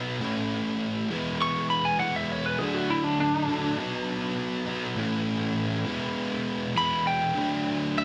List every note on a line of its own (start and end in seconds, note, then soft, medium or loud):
0.00 0.20 B2 medium
0.00 0.20 F#3 medium
0.00 0.20 B3 medium
0.00 0.19 D#4 medium
0.19 1.08 A2 medium
0.19 1.08 E3 medium
0.19 1.09 A3 medium
0.19 1.09 C#4 medium
0.19 1.09 E4 medium
1.10 1.97 E3 medium
1.10 1.98 G#3 medium
1.10 1.99 B3 medium
1.10 1.99 E4 loud
1.42 1.70 C#6 loud
1.70 1.85 B5 medium
1.85 1.99 G#5 medium
1.98 2.57 E3 medium
1.98 2.58 G#3 medium
1.98 2.58 B3 medium
1.98 2.59 E4 medium
1.98 2.14 F#5 medium
2.16 2.32 E5 medium
2.32 2.45 C#5 loud
2.46 2.59 B4 medium
2.59 3.47 D3 medium
2.59 3.48 F#3 medium
2.59 3.47 A3 medium
2.59 2.74 G#4 medium
2.63 3.47 D4 loud
2.74 2.89 F#4 medium
2.90 3.04 E4 medium
3.04 3.18 D4 medium
3.20 3.78 D4 loud
3.48 3.77 D3 medium
3.48 3.77 F#3 medium
3.48 3.77 A3 medium
3.48 3.76 D4 medium
3.78 4.66 B2 medium
3.78 4.66 F#3 medium
3.78 4.66 B3 loud
3.78 4.65 D#4 medium
4.66 4.96 B2 medium
4.66 4.96 F#3 medium
4.66 4.96 B3 medium
4.66 4.95 D#4 medium
4.95 5.84 A2 medium
4.95 5.85 E3 medium
4.95 5.85 A3 medium
4.95 5.85 C#4 loud
4.95 5.86 E4 medium
5.86 6.74 E3 medium
5.86 6.75 G#3 loud
5.86 6.75 B3 loud
5.86 6.76 E4 medium
6.75 7.34 E3 medium
6.75 7.35 G#3 medium
6.75 7.35 B3 medium
6.75 7.36 E4 medium
6.75 7.06 B5 medium
7.07 7.93 G5 medium
7.35 8.04 D3 medium
7.35 8.04 F#3 medium
7.35 8.04 A3 medium
7.35 8.04 D4 medium
7.98 8.04 E5 medium